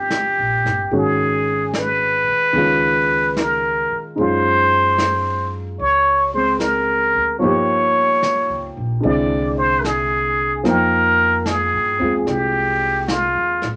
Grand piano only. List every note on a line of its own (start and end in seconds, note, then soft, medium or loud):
0.00 0.89 F3 soft
0.00 0.91 A#3 soft
0.00 0.91 C4 soft
0.00 0.92 D#4 soft
0.00 0.93 G4 medium
0.91 2.51 D#3 soft
0.91 2.53 G#3 soft
0.91 2.54 C#4 soft
0.91 2.55 F#4 soft
2.52 4.16 D#3 soft
2.52 4.16 G#3 soft
2.52 4.18 C#4 soft
2.58 4.19 F4 soft
4.16 6.32 G#3 soft
4.16 7.43 C#4 soft
4.16 7.41 D#4 soft
4.21 7.44 F4 soft
6.34 7.41 G#3 soft
6.34 7.43 C4 soft
7.39 9.02 F3 medium
7.39 9.03 A#3 soft
7.39 9.04 D#4 soft
7.44 9.05 G4 medium
9.00 10.64 D3 soft
9.00 10.64 G#3 soft
9.00 10.66 C4 soft
9.05 10.66 E4 soft
10.63 13.76 F3 medium
10.63 13.76 A#3 soft
10.63 13.76 D#4 soft
10.69 13.76 G5 medium
11.99 13.76 G#3 soft
11.99 13.76 C4 soft
11.99 13.76 F4 soft